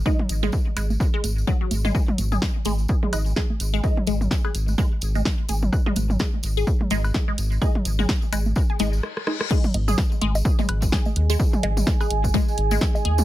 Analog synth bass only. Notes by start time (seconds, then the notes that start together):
0.29 G#1
0.77 G#1
1.24 G#1
1.71 G#1
2.18 G#1
2.66 G#1
3.13 G#1
3.60 G#1
4.07 G#1
4.55 G#1
5.02 G#1
5.49 G#1
5.96 G#1
6.43 G#1
6.91 G#1
7.38 G#1
7.85 G#1
8.33 G#1
8.80 G#1
9.74 G#1
10.21 G#1
10.69 G#1
11.16 D#2
11.63 G#1
12.10 G#1
12.58 G#1
13.05 D#2